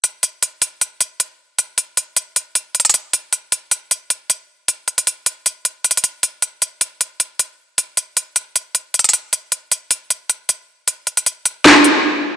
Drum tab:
HH |x-----------x-----------x-----------x-----------x-----------x-----------x-----------------------|x-----------x-----------x-----------x-----------x-----------x-----------x--x--x--x--x-----------|x-----------x-----------x-----------x-----------x-----------x-----------x-----------------------|x-----------x-----x-----x-----------x-----------x-----------x-----------x---x---x---x-----------|
CP |------------------------------------------------------------------------------------------------|------------------------------------------------------------------------------------------------|------------------------------------------------------------------------------------------------|------------------------------------------------------------------------------------------------|
SD |------------------------------------------------------------------------------------------------|------------------------------------------------------------------------------------------------|------------------------------------------------------------------------------------------------|------------------------------------------------------------------------------------------------|

HH |x-----------x-----------x-----------x-----------x-----------x-----------x-----------------------|x-----------x-----------x-----------x-----------x-----------x-----------x--x--x--x--x-----------|x-----------x-----------x-----------x-----------x-----------x-----------x-----------------------|x-----------x-----x-----x-----------x-----------x-----------x-----------------------------------|
CP |------------------------------------------------------------------------------------------------|------------------------------------------------------------------------------------------------|------------------------------------------------------------------------------------------------|------------------------------------------------x-----------------------------------------------|
SD |------------------------------------------------------------------------------------------------|------------------------------------------------------------------------------------------------|------------------------------------------------------------------------------------------------|------------------------------------------------o-----------------------------------------------|